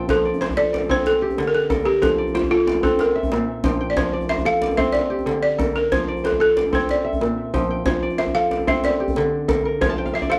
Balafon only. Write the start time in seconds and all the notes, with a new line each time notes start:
0.10 A4
0.41 C5
0.57 D5
0.91 C5
1.07 A4
1.47 A#4
1.55 A4
1.85 G4
2.02 A4
2.35 F4
2.51 F4
2.83 A4
3.01 A#4
3.90 D5
3.97 C5
4.29 E5
4.46 F5
4.77 E5
4.92 D5
5.43 D5
5.76 A#4
5.92 C5
6.26 A4
6.41 A4
6.75 C5
6.91 D5
7.86 C5
8.18 E5
8.35 F5
8.68 E5
8.85 D5
9.82 C5
10.15 E5
10.32 F5